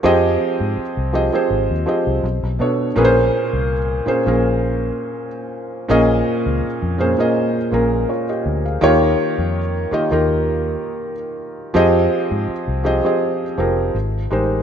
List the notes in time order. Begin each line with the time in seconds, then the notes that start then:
0.03 F2 F3 C4 G4 G#4 D#5
0.60 G#2
0.77 muted fingered electric bass stroke
0.97 C2
1.13 F3 C4 G4 G#4 D#5
1.33 F3 C4 G4 G#4 C5
1.50 G#1
1.70 D#2
1.86 F3 C4 G4 G#4 D#5
2.07 C2
2.24 B1
2.43 B1
2.59 B2 B3 D4 A4 C#5
2.96 A#1 A#2 A#3 C#4 G#4 B4
3.05 C5
3.53 C2
4.06 A#2 A#3 C#4 G#4 C5, muted fingered electric bass stroke
4.26 A#1 A#2 A#3 C#4 G#4 A#4
5.89 A#1 A#2 A#3 C#4 G#4 D#5
6.46 C#2
6.82 F2
6.98 A#2 A#3 C#4 G#4 C5
7.18 A#2 A#3 C#4 G#4 D#5
7.71 A#1 A#2 A#3 C#4 G#4 A#4
8.09 F4 C#5
8.29 G4 D#5
8.46 D2
8.66 G#4 F5
8.81 D#2 D#3 A#3 F4 G4 C#5
9.38 F2
9.91 D#3 A#3 F4 G4 D#5, muted fingered electric bass stroke
10.11 D#2 D#3 A#3 F4 G4 A#4
11.74 F2 F3 C4 G4 G#4 D#5
12.31 G#2
12.48 muted fingered electric bass stroke
12.68 C2
12.84 F3 C4 G4 G#4 D#5
13.04 F3 C4 G4 G#4 D#5
13.57 F1 F3 C4 G4 G#4 A#4
13.95 G#1
14.31 A1 G#3 D#4 G4 A#4 C5